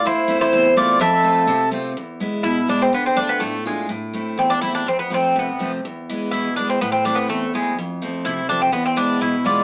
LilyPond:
<<
  \new Staff \with { instrumentName = "Accordion" } { \time 2/4 \tempo 4 = 124 e'8. e'8. f'8 | a'4. r8 | r2 | r2 |
r2 | r2 | r2 | r2 |
r2 | r4. f'8 | }
  \new Staff \with { instrumentName = "Bouzouki" } { \time 2/4 c''8. c''8. d''8 | e''4. r8 | r4 e'8 d'16 c'16 | b16 c'16 d'16 b16 a8 gis8 |
r4 c'16 d'16 e'16 d'16 | c'16 b16 c'8 b8. r16 | r4 e'8 d'16 c'16 | b16 c'16 d'16 b16 a8 gis8 |
r4 e'8 d'16 c'16 | b16 c'16 d'8 e'8 d''8 | }
  \new Staff \with { instrumentName = "Steel-string acoustic guitar" } { \time 2/4 a,8 <a c' e'>8 e,8 <a c' e'>8 | f,8 <a c' f'>8 c8 <a c' f'>8 | e,8 <gis b e'>8 b,8 <gis b e'>8 | d8 <a d' f'>8 a,8 <a d' f'>8 |
a,8 <a c' e'>8 e,8 <a c' e'>8 | f,8 <f a c'>8 c8 <f a c'>8 | e,8 <e gis b>8 b,8 <e gis b>8 | a,8 <e a c'>8 e,8 <e a c'>8 |
f,8 <f a c'>8 c8 <f a c'>8 | e,8 <e gis b>8 b,8 <e gis b>8 | }
>>